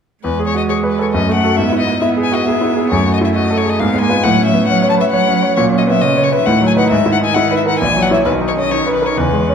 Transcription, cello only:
0.24 1.15 G#3 soft
1.14 1.58 A3 soft
1.58 2.02 B3 soft
2.02 2.46 B3 soft
2.47 2.93 B3 soft
2.92 3.82 A3 soft
3.81 4.24 B3 soft
4.24 4.67 F#3 soft
4.69 5.12 F#3 soft
5.14 5.57 F#3 soft
5.57 6.03 F#3 soft
6.01 6.46 C#3 soft
6.46 7.82 D#3 soft
7.80 8.25 E3 soft
8.26 9.18 D#3 soft
9.16 9.42 C#3 soft
9.41 9.55 E3 soft

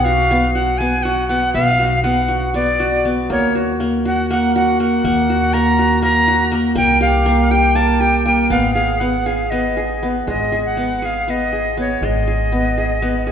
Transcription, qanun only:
0.00 0.30 B3 medium
0.00 0.11 G4 medium
0.05 0.55 F#4 medium
0.31 0.80 B3 medium
0.55 1.05 F#4 medium
0.80 1.29 B3 medium
1.05 1.79 F#4 medium
1.29 1.54 B3 medium
1.54 2.04 B3 medium
1.79 2.28 F#4 medium
2.04 2.54 B3 medium
2.28 2.79 F#4 medium
2.54 3.05 B3 medium
2.80 3.55 F#4 medium
3.05 3.36 B3 medium
3.30 3.80 A#3 medium
3.55 4.05 F#4 medium
3.80 4.30 A#3 medium
4.05 4.55 F#4 medium
4.30 4.79 A#3 medium
4.56 5.29 F#4 medium
4.80 5.04 A#3 medium
5.05 5.54 A#3 medium
5.30 5.78 F#4 medium
5.54 6.02 A#3 medium
5.79 6.27 F#4 medium
6.02 6.51 A#3 medium
6.28 7.07 F#4 medium
6.52 6.75 A#3 medium
6.75 7.25 A#3 medium
7.01 7.51 G4 medium
7.26 7.75 A#3 medium
7.51 8.00 G4 medium
7.75 8.25 A#3 medium
8.00 8.81 G4 medium
8.26 8.56 A#3 medium
8.50 9.01 B3 medium
8.75 9.26 G#4 medium
9.01 9.51 B3 medium
9.26 9.77 G#4 medium
9.52 10.02 B3 medium
9.77 10.52 G#4 medium
10.03 10.77 B3 medium
10.27 12.01 G#3 medium
10.52 11.02 G#4 medium
10.77 11.27 B3 medium
11.02 11.52 G#4 medium
11.28 11.77 B3 medium
11.53 12.27 G#4 medium
11.77 12.52 B3 medium
12.03 13.32 G#3 medium
12.28 12.77 G#4 medium
12.52 13.02 B3 medium
12.78 13.26 G#4 medium
13.02 13.32 B3 medium
13.27 13.32 G#4 medium

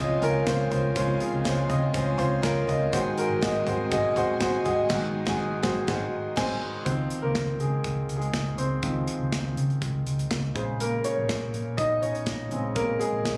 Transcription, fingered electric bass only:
0.00 0.18 C#2 loud
0.23 0.43 C#2 loud
0.47 0.67 C#2 loud
0.71 0.92 C#2 loud
0.96 1.16 C#2 medium
1.33 1.43 C#2 medium
1.45 1.66 C#2 medium
1.70 1.90 C#3 medium
1.94 2.15 C#2 medium
2.19 2.39 C#2 loud
2.43 2.64 C#2 loud
2.68 2.88 C#2 medium
2.93 3.13 G#1 medium
3.29 3.40 G#1 medium
3.42 3.62 G#1 loud
3.66 3.93 G#2 medium
3.92 4.12 G#1 loud
4.15 4.36 G#1 loud
4.41 4.61 G#1 loud
4.66 4.86 G#1 loud
4.90 5.06 G#1 medium
5.27 5.43 G#1 loud
5.63 5.80 G#1 loud
5.88 6.05 G#1 loud
6.37 6.54 G#1 loud
6.86 7.06 C#2 medium
7.23 7.33 C#2 medium
7.59 7.80 C#3 medium
7.85 8.05 C#2 medium
8.09 8.29 C#2 medium
8.33 8.54 C#2 medium
8.58 8.78 C#2 medium
8.83 9.03 C#2 medium
9.19 9.30 C#2 medium
9.57 9.83 C#3 medium
9.82 10.02 C#2 medium
10.06 10.26 C#2 medium
10.56 10.96 A#1 medium
11.18 11.27 A#1 medium
11.29 11.49 A#1 medium
11.54 11.74 A#2 medium
11.78 11.98 A#1 medium
12.03 12.23 A#1 medium
12.27 12.47 A#1 medium
12.52 12.72 A#1 medium
12.76 12.96 A#1 medium
13.13 13.23 A#1 medium
13.25 13.37 A#1 medium

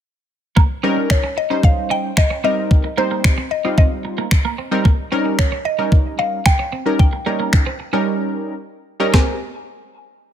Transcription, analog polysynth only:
0.83 1.21 G3 medium
0.83 1.21 C#4 medium
0.83 1.22 D#4 medium
0.83 1.22 A#4 loud
1.50 2.11 G3 medium
1.50 2.11 C#4 medium
1.50 2.11 D#4 medium
1.50 2.11 C5 medium
2.44 2.87 G3 medium
2.44 2.87 C4 medium
2.44 2.87 D#4 medium
2.44 2.87 A#4 medium
2.97 3.36 G3 medium
2.97 3.36 C4 medium
2.97 3.36 D#4 medium
2.97 3.36 C5 medium
3.64 4.25 G3 medium
3.64 4.26 C4 medium
3.64 4.26 D#4 medium
3.64 4.26 F4 medium
4.71 4.85 G3 medium
4.71 4.85 C4 medium
4.71 4.85 D#4 medium
4.71 4.85 A#4 loud
5.12 5.50 G3 medium
5.12 5.50 C#4 medium
5.12 5.50 D#4 medium
5.12 5.50 A#4 loud
5.78 6.40 G3 medium
5.78 6.40 C#4 medium
5.78 6.40 D#4 medium
5.78 6.40 A#4 medium
6.86 7.09 G3 medium
6.86 7.09 C#4 medium
6.86 7.09 D#4 medium
6.86 7.09 A#4 medium
7.26 7.64 G3 medium
7.26 7.64 C#4 medium
7.26 7.64 D#4 medium
7.26 7.64 A#4 medium
7.93 8.54 G3 medium
7.93 8.54 C#4 medium
7.93 8.54 D#4 medium
7.93 8.54 A#4 medium
9.00 9.13 G3 loud
9.00 9.13 C#4 medium
9.00 9.14 D#4 medium
9.00 9.12 A#4 loud
9.14 9.39 G#3 medium
9.14 9.39 C4 medium
9.14 9.39 G4 medium
9.14 9.39 A#4 medium

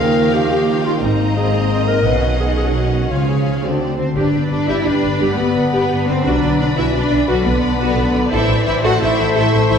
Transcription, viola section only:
0.00 1.00 A#3 medium
1.03 2.06 C4 soft
2.07 3.61 C#4 soft
3.64 3.99 A3 soft
4.16 4.33 G4 soft
4.16 6.21 B4 soft
4.34 4.41 G4 soft
4.51 4.58 D4 soft
4.68 4.85 G4 medium
4.86 4.93 G4 soft
5.03 5.10 D4 soft
5.20 5.37 G4 soft
5.38 5.45 G4 soft
5.56 5.63 D4 soft
5.72 5.88 G4 medium
5.90 5.97 G4 soft
6.07 6.14 D4 soft
6.25 6.41 F#4 medium
6.25 8.28 B4 soft
6.43 6.50 F#4 soft
6.60 6.67 D4 soft
6.78 6.93 F#4 medium
6.94 7.01 F#4 soft
7.11 7.18 D4 medium
7.27 7.44 F#4 medium
7.45 7.52 F#4 soft
7.62 7.69 D4 soft
7.80 7.96 F#4 medium
7.97 8.04 F#4 medium
8.14 8.21 D4 medium
8.31 8.47 A4 medium
8.31 9.78 C5 medium
8.48 8.55 A4 medium
8.66 8.73 E4 medium
8.84 8.99 A4 medium
9.01 9.08 A4 medium
9.18 9.25 E4 medium
9.35 9.51 A4 medium
9.52 9.60 A4 medium
9.69 9.77 E4 medium

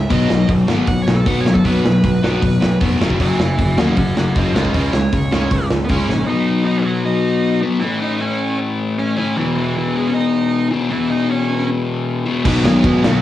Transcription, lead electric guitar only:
0.00 0.11 E5 loud
0.12 0.49 D#5 medium
0.88 1.00 F#5 loud
1.02 1.14 C#5 loud
1.15 1.27 A4 medium
1.27 1.39 F#5 loud
1.41 1.52 C#5 loud
1.53 1.65 A4 medium
1.66 2.78 B4 loud
3.21 3.39 E5 loud
3.21 3.39 G#5 loud
3.40 3.57 E5 medium
3.40 3.58 G#5 medium
3.60 3.77 E5 medium
3.60 3.78 G#5 medium
3.78 3.96 A#4 medium
3.78 3.97 F#5 loud
3.97 4.15 A#4 medium
3.97 4.17 F#5 medium
4.18 4.35 A#4 medium
4.18 4.36 F#5 loud
4.36 4.54 F#4 medium
4.36 4.54 D#5 medium
4.55 4.73 B4 medium
4.55 4.74 D#5 medium
4.75 4.93 B4 medium
4.75 4.94 D#5 medium
4.94 5.69 C#5 loud
5.85 5.90 B3 medium
5.90 6.08 C#4 medium
5.90 6.08 C#5 medium
6.10 6.26 C#4 medium
6.10 6.28 C#5 medium
6.26 6.64 D#4 loud
6.26 6.64 D#5 medium
6.65 6.85 D#4 loud
6.65 6.84 D#5 medium
6.84 7.04 F#3 medium
6.84 7.04 F#4 loud
7.04 7.63 D#4 loud
7.04 7.59 D#5 medium
7.80 8.00 E3 medium
7.80 8.01 E4 loud
8.01 8.21 D#4 medium
8.01 8.20 D#5 medium
8.21 8.57 C#4 medium
8.21 8.58 C#5 medium
8.99 9.17 C#4 medium
8.99 9.16 C#5 medium
9.17 9.38 C#4 medium
9.17 9.35 C#5 medium
9.37 9.55 E3 medium
9.37 9.57 E4 loud
9.56 9.74 E3 medium
9.56 9.77 E4 medium
9.77 9.94 E3 medium
9.77 9.96 E4 loud
9.95 10.06 G#3 medium
9.95 10.08 G#4 loud
10.06 10.14 C#4 medium
10.14 10.69 D#4 loud
10.14 10.68 D#5 medium
10.91 11.09 E3 medium
10.91 11.12 E4 loud
11.10 11.32 D#4 medium
11.10 11.28 D#5 medium
11.31 11.69 C#4 medium
11.31 11.66 C#5 medium
12.65 13.00 G#3 medium
12.65 13.04 G#4 loud
13.04 13.22 F#3 medium
13.04 13.22 F#4 loud

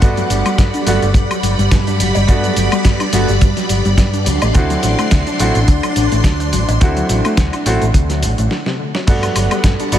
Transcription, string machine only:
0.00 4.23 G3 medium
0.00 8.47 D5 medium
0.00 8.47 F#5 medium
0.00 4.23 B5 medium
4.27 8.48 D4 medium
4.27 8.48 C6 medium
9.08 9.99 G3 medium
9.08 9.99 D5 medium
9.08 9.99 F#5 medium
9.08 9.99 B5 loud

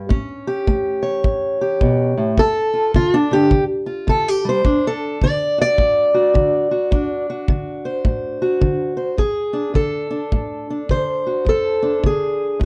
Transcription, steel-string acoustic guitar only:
0.00 0.10 G2 medium
0.09 0.62 A2 medium
0.09 2.35 C#4 medium
0.47 1.60 G4 medium
0.67 1.20 A3 medium
1.03 2.35 C#5 medium
1.24 1.77 A2 medium
1.61 2.36 G4 medium
1.81 2.17 B2 medium
2.17 2.38 A2 medium
2.38 2.90 G2 medium
2.38 2.95 A4 loud
2.74 2.94 F4 soft
2.96 3.30 D3 medium
2.96 3.14 F4 loud
3.14 3.33 D4 medium
3.31 3.50 D3 soft
3.31 3.64 G4 loud
3.51 4.04 D3 medium
3.86 4.28 F4 soft
4.07 4.60 D3 medium
4.07 4.28 A4 loud
4.28 4.47 G4 loud
4.45 4.65 G3 medium
4.49 4.85 C5 medium
4.65 5.17 D2 medium
4.65 6.92 D4 medium
4.87 5.23 A4 loud
5.23 5.75 D3 medium
5.23 5.60 D5 loud
5.58 6.14 F#4 soft
5.58 7.30 D5 loud
5.78 6.31 A2 medium
6.14 6.71 F#4 soft
6.34 6.87 D3 medium
6.71 7.29 F#4 soft
6.91 7.44 D2 medium
6.91 9.16 D4 medium
7.30 8.41 F#4 soft
7.50 8.01 D3 medium
7.85 8.96 C5 medium
8.05 8.58 A2 medium
8.42 9.17 F#4 soft
8.61 9.14 D3 medium
8.97 9.16 C5 medium
9.17 9.71 D2 medium
9.17 9.75 G#4 medium
9.53 10.10 D4 soft
9.74 10.27 D3 medium
9.74 11.25 A4 medium
10.10 10.70 D4 soft
10.32 10.85 A2 medium
10.70 11.82 D4 soft
10.91 11.43 D3 medium
10.91 12.04 C5 loud
11.27 11.48 F#4 soft
11.45 11.99 D2 medium
11.49 12.05 A4 medium
11.82 12.65 D4 soft
12.03 12.56 D3 medium
12.03 12.62 G#4 medium
12.60 12.65 A2 medium

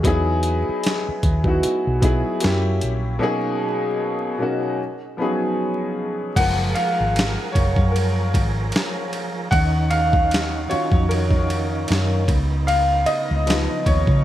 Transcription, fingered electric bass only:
0.05 0.62 E2 medium
0.69 muted fingered electric bass stroke soft
1.09 muted fingered electric bass stroke soft
1.24 1.60 D#2 medium
1.65 muted fingered electric bass stroke soft
1.87 2.22 B1 medium
2.44 2.79 F#2 loud
2.83 3.18 A#1 medium
6.38 6.73 F#1 loud
7.00 7.35 G#1 medium
7.56 7.76 F#1 medium
7.77 8.37 F#2 medium
8.35 8.71 G#1 medium
9.53 10.67 D#2 loud
10.72 muted fingered electric bass stroke soft
10.93 11.85 F2 medium
11.90 12.26 F#2 medium
12.29 13.04 C#2 loud
13.31 13.66 C#2 loud
13.88 14.07 D#2 medium
14.08 14.24 C#3 medium

